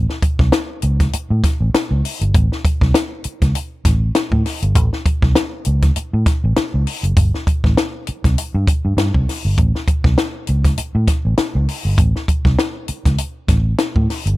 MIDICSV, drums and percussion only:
0, 0, Header, 1, 2, 480
1, 0, Start_track
1, 0, Tempo, 603015
1, 1863, Time_signature, 4, 2, 24, 8
1, 11439, End_track
2, 0, Start_track
2, 0, Title_t, "Drums"
2, 76, Note_on_c, 9, 38, 34
2, 156, Note_off_c, 9, 38, 0
2, 178, Note_on_c, 9, 42, 70
2, 179, Note_on_c, 9, 36, 91
2, 258, Note_off_c, 9, 36, 0
2, 258, Note_off_c, 9, 42, 0
2, 312, Note_on_c, 9, 36, 98
2, 316, Note_on_c, 9, 38, 36
2, 392, Note_off_c, 9, 36, 0
2, 396, Note_off_c, 9, 38, 0
2, 417, Note_on_c, 9, 38, 108
2, 422, Note_on_c, 9, 42, 89
2, 496, Note_off_c, 9, 38, 0
2, 502, Note_off_c, 9, 42, 0
2, 653, Note_on_c, 9, 42, 67
2, 733, Note_off_c, 9, 42, 0
2, 796, Note_on_c, 9, 36, 81
2, 796, Note_on_c, 9, 38, 34
2, 797, Note_on_c, 9, 42, 58
2, 876, Note_off_c, 9, 36, 0
2, 876, Note_off_c, 9, 38, 0
2, 876, Note_off_c, 9, 42, 0
2, 902, Note_on_c, 9, 42, 90
2, 982, Note_off_c, 9, 42, 0
2, 1144, Note_on_c, 9, 36, 87
2, 1146, Note_on_c, 9, 42, 83
2, 1147, Note_on_c, 9, 38, 36
2, 1223, Note_off_c, 9, 36, 0
2, 1225, Note_off_c, 9, 42, 0
2, 1226, Note_off_c, 9, 38, 0
2, 1389, Note_on_c, 9, 38, 114
2, 1389, Note_on_c, 9, 42, 84
2, 1468, Note_off_c, 9, 42, 0
2, 1469, Note_off_c, 9, 38, 0
2, 1631, Note_on_c, 9, 46, 68
2, 1711, Note_off_c, 9, 46, 0
2, 1763, Note_on_c, 9, 42, 54
2, 1842, Note_off_c, 9, 42, 0
2, 1867, Note_on_c, 9, 36, 116
2, 1867, Note_on_c, 9, 42, 84
2, 1946, Note_off_c, 9, 36, 0
2, 1947, Note_off_c, 9, 42, 0
2, 2007, Note_on_c, 9, 38, 33
2, 2087, Note_off_c, 9, 38, 0
2, 2106, Note_on_c, 9, 36, 97
2, 2109, Note_on_c, 9, 42, 74
2, 2186, Note_off_c, 9, 36, 0
2, 2188, Note_off_c, 9, 42, 0
2, 2240, Note_on_c, 9, 36, 88
2, 2246, Note_on_c, 9, 38, 35
2, 2320, Note_off_c, 9, 36, 0
2, 2325, Note_off_c, 9, 38, 0
2, 2344, Note_on_c, 9, 38, 111
2, 2349, Note_on_c, 9, 42, 88
2, 2423, Note_off_c, 9, 38, 0
2, 2429, Note_off_c, 9, 42, 0
2, 2579, Note_on_c, 9, 42, 61
2, 2658, Note_off_c, 9, 42, 0
2, 2721, Note_on_c, 9, 36, 84
2, 2721, Note_on_c, 9, 38, 31
2, 2722, Note_on_c, 9, 42, 52
2, 2800, Note_off_c, 9, 36, 0
2, 2801, Note_off_c, 9, 38, 0
2, 2801, Note_off_c, 9, 42, 0
2, 2826, Note_on_c, 9, 42, 91
2, 2906, Note_off_c, 9, 42, 0
2, 3065, Note_on_c, 9, 36, 88
2, 3065, Note_on_c, 9, 42, 87
2, 3066, Note_on_c, 9, 38, 35
2, 3144, Note_off_c, 9, 36, 0
2, 3145, Note_off_c, 9, 42, 0
2, 3146, Note_off_c, 9, 38, 0
2, 3303, Note_on_c, 9, 38, 116
2, 3303, Note_on_c, 9, 42, 86
2, 3383, Note_off_c, 9, 38, 0
2, 3383, Note_off_c, 9, 42, 0
2, 3437, Note_on_c, 9, 36, 84
2, 3516, Note_off_c, 9, 36, 0
2, 3548, Note_on_c, 9, 38, 41
2, 3548, Note_on_c, 9, 46, 81
2, 3627, Note_off_c, 9, 38, 0
2, 3627, Note_off_c, 9, 46, 0
2, 3681, Note_on_c, 9, 42, 47
2, 3761, Note_off_c, 9, 42, 0
2, 3783, Note_on_c, 9, 42, 92
2, 3785, Note_on_c, 9, 36, 119
2, 3862, Note_off_c, 9, 42, 0
2, 3864, Note_off_c, 9, 36, 0
2, 3923, Note_on_c, 9, 38, 38
2, 4003, Note_off_c, 9, 38, 0
2, 4025, Note_on_c, 9, 36, 88
2, 4025, Note_on_c, 9, 42, 82
2, 4104, Note_off_c, 9, 36, 0
2, 4105, Note_off_c, 9, 42, 0
2, 4159, Note_on_c, 9, 36, 92
2, 4161, Note_on_c, 9, 38, 33
2, 4238, Note_off_c, 9, 36, 0
2, 4241, Note_off_c, 9, 38, 0
2, 4262, Note_on_c, 9, 38, 122
2, 4268, Note_on_c, 9, 42, 94
2, 4342, Note_off_c, 9, 38, 0
2, 4347, Note_off_c, 9, 42, 0
2, 4495, Note_on_c, 9, 42, 62
2, 4575, Note_off_c, 9, 42, 0
2, 4635, Note_on_c, 9, 38, 31
2, 4636, Note_on_c, 9, 42, 54
2, 4638, Note_on_c, 9, 36, 81
2, 4715, Note_off_c, 9, 38, 0
2, 4715, Note_off_c, 9, 42, 0
2, 4717, Note_off_c, 9, 36, 0
2, 4743, Note_on_c, 9, 42, 87
2, 4823, Note_off_c, 9, 42, 0
2, 4984, Note_on_c, 9, 36, 96
2, 4986, Note_on_c, 9, 42, 80
2, 4987, Note_on_c, 9, 38, 36
2, 5064, Note_off_c, 9, 36, 0
2, 5066, Note_off_c, 9, 38, 0
2, 5066, Note_off_c, 9, 42, 0
2, 5225, Note_on_c, 9, 42, 91
2, 5226, Note_on_c, 9, 38, 111
2, 5305, Note_off_c, 9, 38, 0
2, 5305, Note_off_c, 9, 42, 0
2, 5467, Note_on_c, 9, 46, 72
2, 5547, Note_off_c, 9, 46, 0
2, 5602, Note_on_c, 9, 42, 48
2, 5681, Note_off_c, 9, 42, 0
2, 5705, Note_on_c, 9, 36, 118
2, 5705, Note_on_c, 9, 42, 90
2, 5784, Note_off_c, 9, 42, 0
2, 5785, Note_off_c, 9, 36, 0
2, 5846, Note_on_c, 9, 38, 35
2, 5925, Note_off_c, 9, 38, 0
2, 5946, Note_on_c, 9, 36, 92
2, 5950, Note_on_c, 9, 42, 73
2, 6026, Note_off_c, 9, 36, 0
2, 6030, Note_off_c, 9, 42, 0
2, 6081, Note_on_c, 9, 36, 86
2, 6088, Note_on_c, 9, 38, 34
2, 6161, Note_off_c, 9, 36, 0
2, 6168, Note_off_c, 9, 38, 0
2, 6188, Note_on_c, 9, 38, 112
2, 6194, Note_on_c, 9, 42, 81
2, 6268, Note_off_c, 9, 38, 0
2, 6273, Note_off_c, 9, 42, 0
2, 6423, Note_on_c, 9, 42, 73
2, 6503, Note_off_c, 9, 42, 0
2, 6562, Note_on_c, 9, 36, 87
2, 6566, Note_on_c, 9, 38, 33
2, 6567, Note_on_c, 9, 42, 54
2, 6641, Note_off_c, 9, 36, 0
2, 6646, Note_off_c, 9, 38, 0
2, 6646, Note_off_c, 9, 42, 0
2, 6670, Note_on_c, 9, 42, 94
2, 6750, Note_off_c, 9, 42, 0
2, 6905, Note_on_c, 9, 36, 101
2, 6910, Note_on_c, 9, 42, 82
2, 6985, Note_off_c, 9, 36, 0
2, 6990, Note_off_c, 9, 42, 0
2, 7148, Note_on_c, 9, 42, 97
2, 7149, Note_on_c, 9, 38, 108
2, 7228, Note_off_c, 9, 38, 0
2, 7228, Note_off_c, 9, 42, 0
2, 7279, Note_on_c, 9, 36, 71
2, 7359, Note_off_c, 9, 36, 0
2, 7395, Note_on_c, 9, 38, 36
2, 7395, Note_on_c, 9, 46, 67
2, 7475, Note_off_c, 9, 38, 0
2, 7475, Note_off_c, 9, 46, 0
2, 7624, Note_on_c, 9, 36, 107
2, 7627, Note_on_c, 9, 42, 88
2, 7704, Note_off_c, 9, 36, 0
2, 7707, Note_off_c, 9, 42, 0
2, 7763, Note_on_c, 9, 38, 34
2, 7843, Note_off_c, 9, 38, 0
2, 7861, Note_on_c, 9, 36, 92
2, 7864, Note_on_c, 9, 42, 79
2, 7941, Note_off_c, 9, 36, 0
2, 7943, Note_off_c, 9, 42, 0
2, 7994, Note_on_c, 9, 36, 94
2, 7999, Note_on_c, 9, 38, 33
2, 8074, Note_off_c, 9, 36, 0
2, 8079, Note_off_c, 9, 38, 0
2, 8101, Note_on_c, 9, 38, 106
2, 8107, Note_on_c, 9, 42, 89
2, 8181, Note_off_c, 9, 38, 0
2, 8186, Note_off_c, 9, 42, 0
2, 8334, Note_on_c, 9, 42, 59
2, 8414, Note_off_c, 9, 42, 0
2, 8474, Note_on_c, 9, 36, 82
2, 8475, Note_on_c, 9, 38, 36
2, 8476, Note_on_c, 9, 42, 59
2, 8553, Note_off_c, 9, 36, 0
2, 8555, Note_off_c, 9, 38, 0
2, 8555, Note_off_c, 9, 42, 0
2, 8578, Note_on_c, 9, 42, 94
2, 8657, Note_off_c, 9, 42, 0
2, 8816, Note_on_c, 9, 36, 87
2, 8817, Note_on_c, 9, 42, 87
2, 8818, Note_on_c, 9, 38, 35
2, 8896, Note_off_c, 9, 36, 0
2, 8897, Note_off_c, 9, 42, 0
2, 8898, Note_off_c, 9, 38, 0
2, 9056, Note_on_c, 9, 38, 123
2, 9056, Note_on_c, 9, 42, 82
2, 9135, Note_off_c, 9, 42, 0
2, 9136, Note_off_c, 9, 38, 0
2, 9302, Note_on_c, 9, 46, 73
2, 9381, Note_off_c, 9, 46, 0
2, 9536, Note_on_c, 9, 36, 120
2, 9538, Note_on_c, 9, 42, 91
2, 9615, Note_off_c, 9, 36, 0
2, 9618, Note_off_c, 9, 42, 0
2, 9677, Note_on_c, 9, 38, 36
2, 9756, Note_off_c, 9, 38, 0
2, 9777, Note_on_c, 9, 36, 84
2, 9780, Note_on_c, 9, 42, 74
2, 9857, Note_off_c, 9, 36, 0
2, 9859, Note_off_c, 9, 42, 0
2, 9910, Note_on_c, 9, 36, 82
2, 9914, Note_on_c, 9, 38, 34
2, 9989, Note_off_c, 9, 36, 0
2, 9994, Note_off_c, 9, 38, 0
2, 10018, Note_on_c, 9, 38, 118
2, 10024, Note_on_c, 9, 42, 83
2, 10098, Note_off_c, 9, 38, 0
2, 10103, Note_off_c, 9, 42, 0
2, 10252, Note_on_c, 9, 42, 65
2, 10332, Note_off_c, 9, 42, 0
2, 10392, Note_on_c, 9, 36, 84
2, 10393, Note_on_c, 9, 38, 33
2, 10393, Note_on_c, 9, 42, 52
2, 10471, Note_off_c, 9, 36, 0
2, 10473, Note_off_c, 9, 38, 0
2, 10473, Note_off_c, 9, 42, 0
2, 10494, Note_on_c, 9, 42, 98
2, 10574, Note_off_c, 9, 42, 0
2, 10734, Note_on_c, 9, 36, 88
2, 10735, Note_on_c, 9, 42, 79
2, 10736, Note_on_c, 9, 38, 36
2, 10813, Note_off_c, 9, 36, 0
2, 10815, Note_off_c, 9, 42, 0
2, 10816, Note_off_c, 9, 38, 0
2, 10973, Note_on_c, 9, 38, 115
2, 10973, Note_on_c, 9, 42, 88
2, 11053, Note_off_c, 9, 38, 0
2, 11053, Note_off_c, 9, 42, 0
2, 11110, Note_on_c, 9, 36, 75
2, 11190, Note_off_c, 9, 36, 0
2, 11224, Note_on_c, 9, 38, 42
2, 11224, Note_on_c, 9, 46, 72
2, 11303, Note_off_c, 9, 38, 0
2, 11304, Note_off_c, 9, 46, 0
2, 11357, Note_on_c, 9, 42, 51
2, 11437, Note_off_c, 9, 42, 0
2, 11439, End_track
0, 0, End_of_file